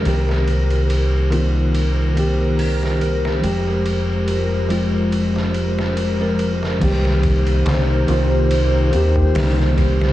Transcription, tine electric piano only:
X:1
M:4/4
L:1/16
Q:"Swing 16ths" 1/4=71
K:Cphr
V:1 name="Tine electric piano"
[E,B,CG]6 [E,B,CF]4 [E,B,CG]6 | [F,A,CG]6 [F,A,CF]4 z3 [F,A,CB]3 | [E,B,CG]6 [E,B,CF]4 [E,B,CG]6 |]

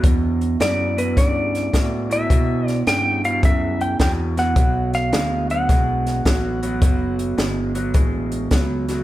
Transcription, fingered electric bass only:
X:1
M:4/4
L:1/8
Q:"Swing" 1/4=106
K:Bm
V:1 name="Fingered electric bass" clef=bass
E,,2 F,,2 G,,2 A,,2 | B,,2 G,,2 F,,2 E,,2 | B,,,2 D,,2 B,,,2 A,,,2 | F,,,2 G,,,2 A,,,2 C,,2 |]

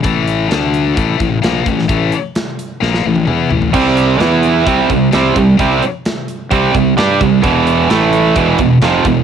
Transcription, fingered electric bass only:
X:1
M:4/4
L:1/8
Q:1/4=130
K:Ador
V:1 name="Fingered electric bass" clef=bass
A,,,2 D,,2 A,,, A,,, ^A,,, =A,,, | A,,, z3 ^A,,, =A,,, E,, A,,, | C,,2 E,,2 C,, C,, C,, C,, | C,, z3 C,, C,, G,, C,, |
E,,,2 A,,,2 E,,, E,,, =F,,, E,,, |]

